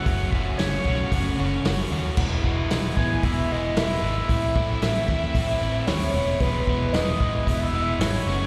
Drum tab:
CC |--------|x-------|--------|--------|
HH |o-o-o-o-|--o-o-o-|o-o-o-o-|o-o-o-o-|
SD |--o---o-|--o---o-|--o---o-|--o---o-|
BD |oo-oo---|oo-oo---|oo-oo---|oo-oo---|